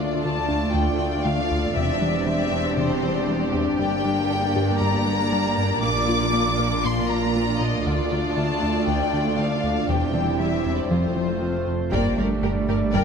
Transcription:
Already playing: cello section D2, double bass section D2, synth arpeggio sound A3, viola section A3 D4, french horn section A3 F4, analog synth pad A3 D4 F4 D5, violin section F4 D5
0.00 analog synth bass D3
0.23 analog synth bass D3, synth arpeggio sound A3, violin section A5
0.49 analog synth bass D2, synth arpeggio sound D4
0.74 analog synth bass D2, synth arpeggio sound D3, violin section G5
0.99 analog synth bass D3, synth arpeggio sound A3
1.25 analog synth bass D3, synth arpeggio sound A3, violin section F5
1.51 analog synth bass D2
1.76 double bass section E1, cello section E2, analog synth bass E2, synth arpeggio sound C3, viola section C4, analog synth pad C4 D4 G4, french horn section C4 D4, violin section G4 E5
2.01 analog synth bass E3, synth arpeggio sound G3
2.27 analog synth bass E3, synth arpeggio sound G3, violin section E5
2.52 analog synth bass E2, synth arpeggio sound C4
2.77 analog synth bass E2, synth arpeggio sound C3, violin section C5
3.03 analog synth bass E3, synth arpeggio sound G3
3.28 analog synth bass E3, synth arpeggio sound G3
3.54 analog synth bass E2
3.79 double bass section G1, cello section G2, analog synth bass G2, synth arpeggio sound G3, analog synth pad A#3, viola section A#3 D4, french horn section A#3, violin section D5 G5
4.05 analog synth bass G3, synth arpeggio sound D4
4.30 analog synth bass G3, synth arpeggio sound D4
4.56 analog synth bass G2, synth arpeggio sound G4
4.81 analog synth bass G2, synth arpeggio sound G3, violin section A#5
5.06 analog synth bass G3, synth arpeggio sound D4
5.32 analog synth bass G3, synth arpeggio sound D4
5.58 analog synth bass G2
5.82 double bass section A#1, analog synth bass A#2, cello section A#2, synth arpeggio sound A#3, violin section F4 D6, analog synth pad F4 D5, french horn section F4
6.08 analog synth bass A#3, synth arpeggio sound F4
6.33 analog synth bass A#3, synth arpeggio sound F4
6.59 analog synth bass A#2, synth arpeggio sound A#4
6.84 analog synth bass A#2, synth arpeggio sound A#3, violin section C6
7.10 analog synth bass A#3, synth arpeggio sound F4, violin section A#5
7.36 analog synth bass A#3, synth arpeggio sound F4
7.61 analog synth bass A#2, violin section D#5
7.85 double bass section D2, analog synth bass D2, cello section D2, synth arpeggio sound D3, analog synth pad A3 D4, viola section A3 D4, french horn section A3, violin section D5
8.12 analog synth bass D3, synth arpeggio sound A3
8.37 analog synth bass D3, synth arpeggio sound A3, violin section A5
8.63 analog synth bass D2, synth arpeggio sound D4
8.87 analog synth bass D2, synth arpeggio sound D3, violin section G5
9.13 analog synth bass D3, synth arpeggio sound A3
9.38 analog synth bass D3, synth arpeggio sound A3, violin section F5
9.64 analog synth bass D2
9.89 double bass section E1, analog synth bass E2, cello section E2, synth arpeggio sound C3, viola section G3, analog synth pad G3 C4 E4, french horn section C4 D4, violin section G4 C5 G5
10.14 analog synth bass E3, synth arpeggio sound G3
10.40 analog synth bass E3, synth arpeggio sound G3, violin section E5
10.66 analog synth bass E2, synth arpeggio sound C4
10.79 violin section D5
10.91 double bass section F1, cello section F2, analog synth bass F2, synth arpeggio sound F3, viola section A3 C4, analog synth pad A3 F4 C5, french horn section A3 C4, violin section F4 C5
11.16 analog synth bass F3, synth arpeggio sound C4
11.42 analog synth bass F3, synth arpeggio sound C4
11.67 analog synth bass F2
11.92 double bass section G1, sub bass G1, analog synth bass G2, analog synth pad A#2 G3 D4 D5, synth arpeggio sound G3, cello section A#3, french horn section G4 D5, viola section A#4, violin section D5 G5, taiko
12.18 double bass section G1, analog synth bass G3, cello section A3, synth arpeggio sound D4, violin section A#4 D5, viola section A#4
12.43 double bass section G1, analog synth bass G2, synth arpeggio sound G4, violin section G4 A#4, viola section A#4
12.68 double bass section G1, analog synth bass G2, synth arpeggio sound G4, violin section A#4 D5, viola section A#4
12.93 double bass section G1, analog synth bass G2, synth arpeggio sound G3, cello section A#3, viola section A#4, violin section D5 G5, taiko

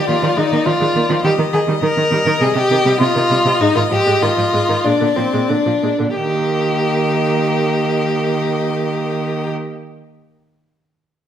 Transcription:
Already playing: violin D5
0.08 cello D#3, viola A#3, violin F4
0.23 cello D#3, viola F3
0.36 cello D#3, viola G#3, violin D#4
0.51 cello D#3, viola A#3
0.66 cello D#3, viola F3, violin F4
0.80 cello D#3, viola G#3
0.95 cello D#3, viola A#3
1.09 cello D#3, viola F3
1.24 cello D#3, viola G3, violin G4 D#5
1.39 cello D#3, viola D#3
1.53 viola D#3, cello D#3, violin G#4
1.68 cello D#3, viola G3
1.83 cello D#3, viola D#3, violin A#4
1.97 cello D#3, viola D#3
2.11 cello D#3, viola G3
2.26 cello D#3, viola D#3
2.41 cello C3, viola G3, violin G#4
2.55 cello C3, viola C3, violin G4
2.70 cello C3, viola D#3
2.85 cello C3, viola G3
3.00 viola C3, cello C3, violin F4
3.15 cello C3, viola D#3
3.30 cello C3, viola G3
3.45 cello C3, viola C3
3.61 cello G#2, viola G#3, violin D#4
3.76 cello G#2, viola D#3, violin F4
3.91 cello G#2, viola F3, violin G4
4.06 cello G#2, viola G#3
4.22 cello G#2, viola D#3, violin F4
4.37 cello G#2, viola F3
4.53 cello G#2, viola G#3
4.69 cello G#2, viola D#3
4.84 cello A#2, viola G#3, violin D4 D5
5.01 cello A#2, viola D3
5.16 cello A#2, viola F3, violin C4
5.33 cello A#2, viola G#3
5.49 cello A#2, viola D3, violin D4
5.66 cello A#2, viola F3
5.83 cello A#2, viola G#3
5.99 cello A#2, viola D3
6.16 cello D#3, viola A#3, violin G4 D#5

